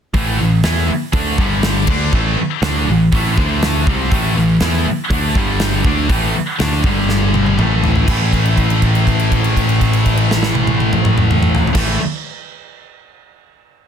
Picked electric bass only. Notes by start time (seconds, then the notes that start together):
0.14 A1
0.41 A1
0.64 E2
0.90 muted picked electric bass stroke
1.13 D2
1.39 G1
1.88 D2
2.12 A1
2.62 D2
2.88 A1
3.12 A1
3.38 D2
3.87 C2
4.12 A1
4.37 A1
4.61 E2
4.87 muted picked electric bass stroke
5.10 D2
5.36 G1
5.85 D2
6.09 A1
6.61 D2
6.84 G1
7.58 A1
8.08 A1
11.75 A1